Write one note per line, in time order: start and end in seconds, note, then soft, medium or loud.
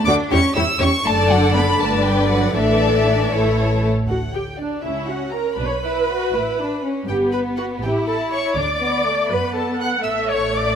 0.06 0.14 D2 medium
0.06 0.14 A3 medium
0.06 0.31 D4 medium
0.06 0.14 F#4 medium
0.06 0.15 F#4 medium
0.06 0.16 D5 medium
0.06 0.14 D6 medium
0.31 0.39 E2 medium
0.31 0.39 G3 medium
0.31 0.56 C#4 medium
0.31 0.39 E4 medium
0.31 0.39 G4 medium
0.31 0.39 C#5 medium
0.31 0.55 C#6 medium
0.55 0.63 E2 medium
0.55 0.64 G3 medium
0.55 0.63 E4 medium
0.55 0.64 E4 medium
0.55 0.63 G4 medium
0.55 0.63 C#5 medium
0.55 0.80 E6 medium
0.79 0.87 E2 medium
0.79 0.88 G3 medium
0.79 0.88 C#4 medium
0.79 0.88 E4 soft
0.79 0.88 G4 medium
0.79 0.88 C#5 medium
0.79 1.05 C#6 medium
1.04 1.75 F#1 medium
1.04 1.75 D3 medium
1.04 1.12 A3 medium
1.04 1.75 D4 medium
1.04 1.76 A4 medium
1.04 1.76 D5 medium
1.04 1.29 A5 medium
1.29 1.37 F#3 medium
1.29 1.54 F#5 medium
1.53 1.62 B3 medium
1.53 1.78 B5 medium
1.78 2.54 G1 medium
1.78 2.54 D3 medium
1.78 2.04 A3 medium
1.78 2.54 D4 medium
1.78 2.55 B4 medium
1.78 2.52 D5 medium
1.78 2.05 A5 medium
2.04 2.30 G3 medium
2.04 2.30 G5 medium
2.30 2.56 F#3 medium
2.30 2.55 F#5 medium
2.54 3.30 A1 medium
2.54 3.83 E3 medium
2.54 3.31 A3 medium
2.54 3.31 D4 medium
2.54 3.30 A4 medium
2.54 3.30 D5 medium
2.54 3.81 E5 medium
3.32 3.87 A1 medium
3.32 3.87 A3 medium
3.32 3.89 E4 medium
3.32 3.88 A4 medium
3.32 3.89 C#5 medium
4.08 4.80 D2 soft
4.08 4.80 D3 soft
4.08 4.18 F#4 medium
4.08 4.33 F#5 soft
4.34 4.42 G4 medium
4.34 4.60 G5 soft
4.59 4.84 D4 medium
4.59 4.84 D5 soft
4.82 5.55 C#2 soft
4.82 5.55 C#3 soft
4.82 5.54 C#4 soft
4.82 5.09 E4 medium
4.82 5.09 E5 soft
5.09 5.34 F#4 soft
5.09 5.34 F#5 soft
5.33 5.58 A#4 medium
5.33 5.59 A#5 soft
5.57 6.29 B1 soft
5.57 6.30 B2 soft
5.57 5.65 D4 medium
5.57 5.66 B4 medium
5.57 6.80 B5 medium
5.65 5.73 C#5 soft
5.72 6.83 B4 medium
5.83 6.08 E4 soft
6.10 6.34 F#4 soft
6.33 7.04 A1 soft
6.33 7.04 A2 soft
6.33 6.59 E4 soft
6.59 6.83 D4 soft
6.84 7.08 C#4 soft
7.07 7.78 G1 medium
7.07 7.78 G2 medium
7.07 7.81 B3 medium
7.07 7.30 G4 medium
7.07 7.17 G5 soft
7.33 7.41 B4 medium
7.33 7.41 B5 soft
7.57 7.65 F#4 medium
7.57 7.66 F#5 soft
7.82 8.53 A1 medium
7.82 8.53 A2 soft
7.82 8.58 E4 medium
7.82 8.07 G4 soft
7.82 7.92 G5 soft
8.07 8.15 A4 medium
8.07 8.32 A5 soft
8.32 8.57 C#5 medium
8.32 8.57 C#6 medium
8.57 9.27 D2 medium
8.57 9.27 D3 medium
8.57 8.65 D4 medium
8.57 9.31 D5 medium
8.57 9.30 D6 medium
8.81 9.06 B3 soft
9.05 9.31 A3 soft
9.29 10.01 F#2 medium
9.29 10.01 F#3 medium
9.29 10.05 B3 medium
9.29 9.56 B4 medium
9.29 9.56 B5 medium
9.56 9.81 A4 medium
9.56 9.81 A5 soft
9.79 10.05 F#5 medium
9.79 9.90 F#6 medium
10.04 10.75 A1 medium
10.04 10.75 A2 soft
10.04 10.75 A3 medium
10.04 10.29 E5 medium
10.04 10.12 E6 medium
10.29 10.54 C#5 medium
10.29 10.55 C#6 medium
10.55 10.75 D5 medium
10.55 10.75 D6 medium